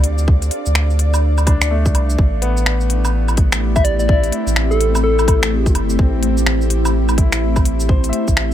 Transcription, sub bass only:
Already playing: D2
0.66 D2
1.94 C2
2.18 A1
4.46 A1
5.74 G1
5.99 A1
8.28 A1

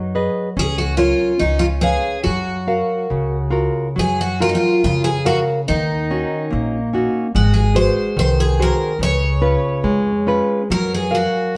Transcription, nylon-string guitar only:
Already playing: F#3
0.15 G#4 B4 D#5
0.57 C#4
0.98 F#3 A#4 C#5
1.40 C#4
1.83 B4 C#5 F5
2.24 F#3
2.67 F#4 A#4 F5
3.10 C#3
3.50 F4 F#4 A#4
3.96 F#3
4.40 F4 F#4 A#4
4.85 C#3
5.25 F#4 A#4 F5
5.69 D#3
6.11 C#4 D#4 F#4
6.51 A#3
6.93 C#4 D#4 F#4
7.35 G#3
7.75 F#4 G#4 C5
8.17 D#3
8.59 F#4 G#4 C5
9.01 C#3
9.41 C#4 F4 B4
9.84 G#3
10.27 C#4 F4 B4
10.71 F#3
11.11 F#4 A#4 F5

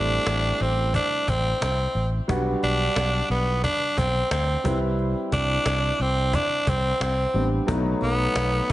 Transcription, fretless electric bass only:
Already playing: A1
0.27 A1
0.60 A1
1.28 A1
1.61 C2
1.95 A1
2.29 B1
2.63 B1
2.96 B1
3.30 B1
3.97 B1
4.31 D2
4.65 C2
5.32 C2
5.66 C2
5.99 C2
6.67 C2
7.00 C2
7.34 A1
7.68 B1
8.02 B1
8.35 B1

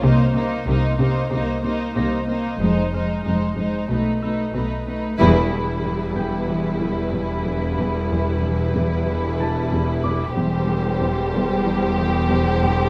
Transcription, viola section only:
0.01 A#3
0.34 A#3
0.67 A#3
1.00 A#3
1.32 A#3
1.63 A#3
1.96 A#3
2.27 A#3
2.60 G#3
2.92 G#3
3.24 G#3
3.57 G#3
3.90 A3
4.23 A3
4.54 A3
4.87 A3
5.20 G3
10.36 G3

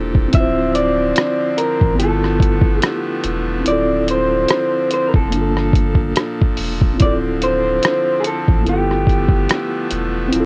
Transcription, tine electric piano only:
Already playing: A#3 D4 E4 F4 A4 C5
0.28 C4
0.32 E4
0.36 F4
0.40 C5
1.95 B3 E4
2.03 F4 A4
3.61 C4 E4
3.69 F4 A4
5.30 A#3 D4
5.38 F4
5.42 A4
6.94 C4
6.98 E4
7.02 F4 A4
8.61 A#3
8.65 B3 E4 F4
8.73 A4
10.28 C4
10.33 E4 F4
10.40 A4

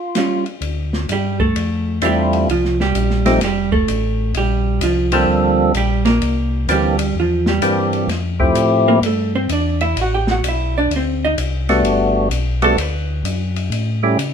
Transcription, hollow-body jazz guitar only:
0.17 G3 C#4 F4
1.12 G3 G4
1.40 A3 A4
2.05 G3 G4
2.51 F3 F4
2.81 G3 G4
3.44 G3 G4
3.72 A3 A4
4.37 G3 G4
4.83 F3 F4
5.12 G3 G4
5.77 G3 G4
6.05 A#3 A#4
6.71 G3 G4
7.20 F3 F4
7.48 G3 G4
8.88 A#3 A#4
9.06 A3 A4
9.35 C4 C5
9.52 D4 D5
9.81 E4 E5
10.01 F#4 F#5
10.14 G4 G5
10.31 F#4 F#5
10.48 E4 E5
10.78 D4 D5
10.96 C4 C5
11.25 D#4 D#5
12.64 A4
12.80 B4

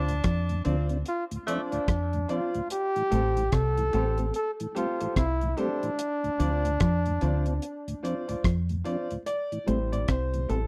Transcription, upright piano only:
0.64 F4 C5 D5
0.90 C5 D5
1.46 F4 C5 D5
1.71 F4 C5 D5
2.28 F4 C5 D5
3.11 G4 A4 C5
3.93 G4 A4 C5
4.18 A4 C5
4.75 G4 A4 C5
5.00 G4 A4 C5
5.57 G4 A4 C5
6.39 F4 C5 D5
7.21 F4 C5 D5
7.46 C5 D5
8.03 F4 C5 D5
8.28 F4 C5 D5
8.84 F4 C5 D5
9.26 D5
9.66 G3 C4 E4 C5
9.92 D5
10.09 C5
10.50 A4

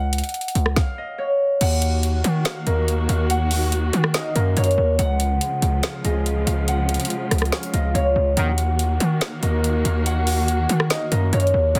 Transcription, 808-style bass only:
Already playing: C#2
0.55 C#2
1.61 D#2
2.24 D#3
2.67 D#2
3.09 D#2
3.93 D#3
4.36 F#2
4.57 F#2
4.78 D#2
4.99 C#2
5.62 C#2
6.05 C#2
6.47 C#2
7.31 C#2
7.74 C#2
7.95 C#2
8.16 C#2
8.37 D#2
9.00 D#3
9.43 D#2
9.85 D#2
10.69 D#3
11.12 F#2
11.33 F#2
11.54 D#2
11.75 C#2

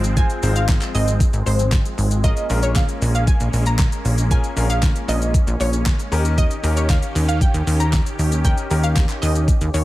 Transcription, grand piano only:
0.17 C4 F4 G#4 C5
0.43 C4 F4 G#4 C5
2.24 C#4 F4 G#4 A#4
2.50 C#4 F4 G#4 A#4
4.31 C#4 F4 G#4 A#4
4.57 C#4 F4 G#4 A#4
6.12 C#4 D#4 G4 A#4
6.63 C#4 D#4 G4 A#4
8.45 C#4 D#4 G4 A#4
8.70 C#4 D#4 G4 A#4

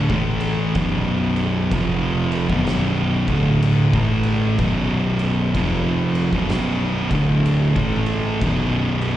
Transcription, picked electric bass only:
0.10 A1
0.76 B0
1.71 F1
2.50 B0
3.28 D1
3.94 A1
4.59 B0
5.55 F1
6.33 B0
7.10 D1
7.76 A1
8.42 B0

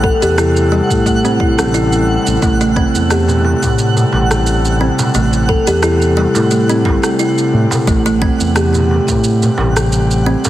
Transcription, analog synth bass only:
Already playing: A1
0.22 E2
0.91 A2
1.59 A1
2.27 A1
2.42 A1
2.95 E2
3.63 A2
4.13 A1
5.15 A1
5.68 E2
6.36 A2
6.85 G1
7.54 A2
7.88 A1
8.40 E2
9.08 A2
9.58 A1

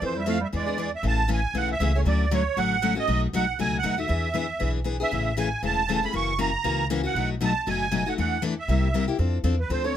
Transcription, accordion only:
0.05 C5
0.18 E5
0.29 F5
0.43 E5
0.56 D5
0.95 E5
1.08 A5
1.33 G#5
1.57 F#5
1.72 E5
1.96 C#5
2.08 D5
2.33 C#5
2.58 F#5
2.99 D#5
3.35 F#5
3.60 G#5
3.79 F#5
3.99 E5
5.02 E5
5.38 G#5
5.65 A5
6.05 B5
6.16 C#6
6.41 A#5
7.06 F#5
7.44 A5
7.69 G#5
8.09 F#5
8.19 F#5
8.59 E5
9.60 B4
9.72 C5
9.84 C#5

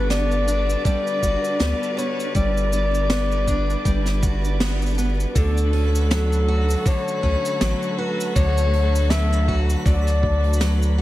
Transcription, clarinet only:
0.10 D5
0.86 D5
1.98 C#5
2.36 D5
5.29 B4
5.36 A4
6.12 A4
6.87 C#5
7.98 B4
8.36 C#5
9.10 E5
9.86 D5

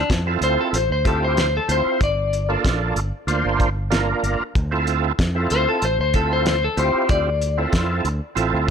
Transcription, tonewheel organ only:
0.27 C4 E4 F4 A4
1.05 C4 E4 F4 G4
1.68 C4 E4 F4 C5
2.49 A#3 D4 F4 A4
3.27 A#3 D4 F4 C5
3.90 A#3 D4 F4 A#4
4.71 C4 E4 F4 A4
5.35 C4 E4 F4 A4
6.14 C4 E4 F4 A4
6.77 C4 E4 F4 G4
7.58 C4 E4 F4 A4
8.35 C4 E4 F4 A4

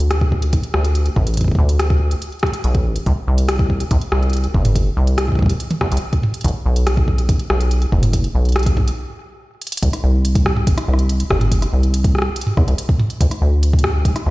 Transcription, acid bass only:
Already playing: D2
0.53 B1
0.74 D2
1.16 A1
1.58 D2
2.64 B1
2.85 A1
3.06 C2
3.28 C2
3.91 C2
4.12 C2
4.55 G1
4.97 C2
5.81 E2
5.92 C2
6.45 B1
6.66 B1
7.29 A1
7.50 B1
7.92 F#1
8.35 B1
9.83 C2
10.04 C2
10.67 G1
10.88 C2
11.30 G1
11.73 C2
12.57 E2
12.68 C2
13.21 D2
13.42 D2
14.05 B1
14.26 D2

